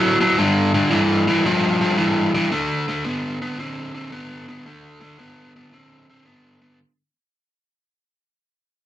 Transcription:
0.00 0.17 A2 medium
0.00 0.17 F#3 medium
0.21 0.36 A2 medium
0.21 0.36 F#3 medium
0.38 0.71 G2 medium
0.38 0.71 D3 medium
0.74 0.89 G2 medium
0.74 0.90 D3 medium
0.91 1.24 G2 medium
0.91 1.24 E3 medium
1.27 1.43 G2 medium
1.27 1.43 E3 medium
1.45 1.78 G2 medium
1.45 1.78 F3 loud
1.81 1.96 G2 medium
1.81 1.97 F3 medium
1.98 2.31 G2 medium
1.98 2.31 E3 medium
2.34 2.50 G2 medium
2.34 2.50 E3 medium
2.52 2.85 D3 medium
2.52 2.85 A3 medium
2.88 3.03 D3 medium
2.88 3.04 A3 medium
3.04 3.38 D3 medium
3.04 3.38 B3 medium
3.42 3.57 D3 medium
3.42 3.58 B3 medium
3.59 3.92 D3 medium
3.59 3.92 C4 medium
3.94 4.10 D3 medium
3.94 4.11 C4 medium
4.12 4.45 D3 medium
4.12 4.45 B3 medium
4.48 4.64 D3 medium
4.48 4.65 B3 medium
4.66 4.99 D3 medium
4.66 4.99 A3 medium
5.00 5.17 D3 medium
5.00 5.18 A3 medium
5.18 5.52 D3 medium
5.18 5.52 B3 medium
5.56 5.72 D3 medium
5.56 5.72 B3 medium
5.73 6.06 D3 medium
5.73 6.06 C4 medium
6.10 6.24 D3 medium
6.10 6.25 C4 medium
6.25 6.59 D3 medium
6.25 6.59 B3 medium
6.62 6.78 D3 medium
6.62 6.78 B3 medium

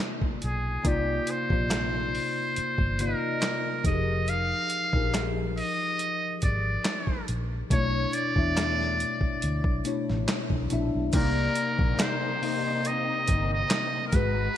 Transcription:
0.00 0.84 C3 medium
0.00 0.84 A#3 medium
0.00 0.85 D#4 medium
0.00 0.86 F4 medium
0.00 0.87 D5 medium
0.22 kick medium
0.42 0.76 B1 medium
0.42 0.89 G#4 medium
0.42 closed hi-hat medium
0.84 1.19 C2 medium
0.84 1.35 C3 medium
0.84 1.35 A#3 medium
0.84 1.35 D#4 medium
0.84 1.36 F4 medium
0.84 1.36 D5 loud
0.84 kick medium
0.84 closed hi-hat medium
0.88 1.32 G4 medium
1.27 3.03 C5 medium
1.27 closed hi-hat medium
1.50 2.18 A#1 medium
1.50 2.66 C3 medium
1.50 2.67 A#3 medium
1.50 2.67 D#4 medium
1.50 2.68 F4 medium
1.50 2.68 C5 medium
1.50 kick medium
1.71 snare loud
1.71 clap medium
1.71 closed hi-hat medium
2.15 open hi-hat soft
2.56 muted fingered electric bass stroke soft
2.56 closed hi-hat medium
2.78 3.12 G1 medium
2.78 kick medium
2.99 3.67 C3 medium
2.99 3.68 A#3 medium
2.99 3.68 D#4 medium
2.99 3.68 F4 medium
2.99 3.86 A#4 medium
2.99 3.07 D5 medium
2.99 closed hi-hat medium
3.09 3.72 D#5 medium
3.42 snare medium
3.42 clap medium
3.42 closed hi-hat medium
3.84 4.52 F1 loud
3.84 4.71 F3 medium
3.84 4.71 D#4 medium
3.84 4.71 G4 medium
3.84 4.72 G#4 medium
3.84 3.93 A4 medium
3.84 4.31 D#5 medium
3.84 kick loud
3.84 closed hi-hat medium
3.95 4.75 A#4 medium
4.28 5.31 F5 loud
4.28 closed hi-hat medium
4.70 closed hi-hat medium
4.93 5.61 A#1 medium
4.93 6.27 F3 medium
4.93 6.27 D#4 medium
4.93 6.28 G4 medium
4.93 6.28 G#4 medium
4.93 6.28 A#4 medium
4.93 kick medium
5.14 snare medium
5.14 clap medium
5.14 closed hi-hat medium
5.58 6.38 D#5 loud
5.58 open hi-hat soft
5.99 closed hi-hat medium
6.42 6.76 G#1 medium
6.42 7.24 D5 medium
6.42 kick medium
6.42 closed hi-hat medium
6.85 snare loud
6.85 clap medium
6.85 closed hi-hat medium
7.07 kick medium
7.28 7.62 A#1 medium
7.28 closed hi-hat medium
7.70 8.05 B1 medium
7.70 8.21 B2 medium
7.70 8.21 A3 medium
7.70 8.22 D4 medium
7.70 8.22 E4 medium
7.70 8.15 C#5 loud
7.70 8.23 C#5 loud
7.70 kick medium
7.70 closed hi-hat medium
8.13 9.85 D5 loud
8.13 closed hi-hat medium
8.36 9.03 E2 medium
8.36 9.52 B2 medium
8.36 9.53 A3 medium
8.36 9.53 D4 medium
8.36 9.53 E4 medium
8.36 9.54 E5 medium
8.36 kick medium
8.57 snare medium
8.57 clap medium
8.57 closed hi-hat medium
8.80 snare soft
9.00 closed hi-hat medium
9.21 kick medium
9.42 9.61 D2 medium
9.42 closed hi-hat medium
9.64 9.80 B1 medium
9.64 kick medium
9.85 10.53 B2 medium
9.85 10.53 A3 medium
9.85 10.53 D4 medium
9.85 10.54 E4 medium
9.85 10.54 C#5 medium
9.85 closed hi-hat medium
10.10 10.24 A1 medium
10.10 snare soft
10.28 snare loud
10.28 clap medium
10.28 closed hi-hat medium
10.50 10.66 B1 medium
10.50 kick medium
10.70 10.89 A#1 medium
10.70 11.04 B2 medium
10.70 11.05 A3 medium
10.70 11.05 D4 medium
10.70 11.05 E4 medium
10.70 11.06 E5 medium
10.70 closed hi-hat medium
10.95 11.10 B1 medium
11.13 11.47 C2 loud
11.13 14.10 C3 medium
11.13 12.15 C3 loud
11.13 14.10 A#3 medium
11.13 12.15 A#3 loud
11.13 14.10 C4 medium
11.13 14.10 D#4 medium
11.13 12.16 D#4 medium
11.13 12.03 A#4 loud
11.13 12.16 D5 loud
11.13 kick loud
11.13 closed hi-hat medium
11.13 crash loud
11.55 closed hi-hat medium
11.79 11.95 A#1 medium
11.79 kick medium
11.99 12.88 C5 medium
11.99 snare loud
11.99 clap medium
11.99 closed hi-hat medium
12.42 13.76 C3 medium
12.42 13.77 A#3 medium
12.42 13.77 D#4 medium
12.42 13.78 D#5 medium
12.42 open hi-hat soft
12.85 13.51 D#5 medium
12.85 closed hi-hat medium
13.28 13.62 G1 medium
13.28 kick medium
13.28 closed hi-hat medium
13.53 14.04 D#5 medium
13.70 snare loud
13.70 clap medium
13.70 closed hi-hat medium
14.08 14.16 A#4 medium
14.12 14.47 G#1 loud
14.12 14.57 G#3 medium
14.12 14.57 F#4 medium
14.12 14.57 G#4 medium
14.12 14.57 B4 medium
14.12 14.57 A#5 medium
14.12 kick loud
14.12 closed hi-hat medium

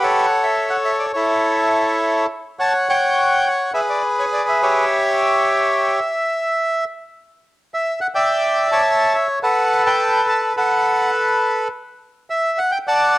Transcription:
0.00 0.26 G4 medium
0.00 1.12 A4 medium
0.00 0.26 B4 medium
0.00 1.12 C#5 medium
0.00 0.44 F#5 medium
0.43 0.70 E5 medium
0.70 0.77 F#5 medium
0.85 0.92 E5 medium
0.99 1.06 D5 medium
1.13 2.26 E4 soft
1.13 2.26 A4 soft
1.13 2.25 C#5 medium
2.59 2.88 C#5 medium
2.59 3.45 F#5 medium
2.59 2.73 A5 medium
2.89 3.71 C#5 medium
2.89 3.47 G5 medium
3.47 3.73 F#5 medium
3.74 4.85 G#4 medium
3.74 4.85 B4 medium
3.74 3.80 E5 medium
3.89 4.02 D5 medium
4.19 4.25 C#5 medium
4.33 4.46 D5 medium
4.49 4.61 E5 medium
4.63 6.00 G4 medium
4.63 5.99 C#5 medium
4.63 6.85 E5 medium
7.74 8.00 E5 medium
8.01 8.07 F#5 medium
8.15 8.82 D5 medium
8.15 8.71 E5 medium
8.15 8.68 G5 medium
8.72 9.39 C#5 medium
8.72 9.13 E5 medium
8.72 9.16 A5 medium
9.15 9.27 E5 medium
9.43 10.53 A4 medium
9.43 9.85 B4 medium
9.43 9.83 F#5 medium
9.86 10.56 B4 medium
9.86 10.26 G5 medium
10.29 10.41 A5 medium
10.57 11.68 A4 soft
10.57 11.68 B4 soft
10.57 11.11 F#5 medium
12.30 12.59 E5 medium
12.58 12.71 F#5 medium
12.71 12.78 G5 medium
12.87 13.18 D5 medium
12.87 13.18 F#5 medium
12.87 13.18 A5 medium

